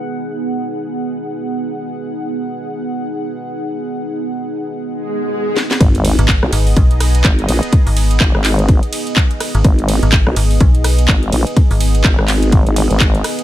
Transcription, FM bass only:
X:1
M:4/4
L:1/16
Q:"Swing 16ths" 1/4=125
K:G#m
V:1 name="FM bass" clef=bass
z16 | z16 | z16 | z3 G,,,2 z G,,,2 B,,,4 z4 |
z G,,,3 z8 z3 G,,, | z3 G,,,2 z G,,,2 B,,,4 z4 | z G,,,3 z12 |]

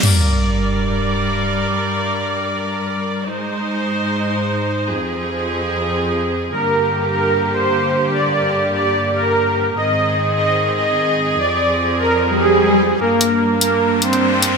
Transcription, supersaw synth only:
X:1
M:4/4
L:1/8
Q:"Swing 16ths" 1/4=148
K:Gphr
V:1 name="Supersaw synth"
z8 | z8 | z8 | z8 |
B3 B2 c3 | d3 d2 B3 | e3 e2 e3 | d3 B2 A3 |
[B,B]3 [B,B]2 [Cc]3 |]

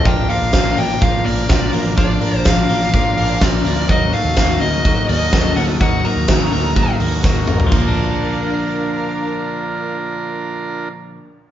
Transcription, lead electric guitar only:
X:1
M:4/4
L:1/8
Q:1/4=125
K:Bb
V:1 name="Lead electric guitar"
g f2 g f d2 z | d2 f4 d2 | e f2 e2 e2 _g | _g b4 z3 |
z8 | z8 |]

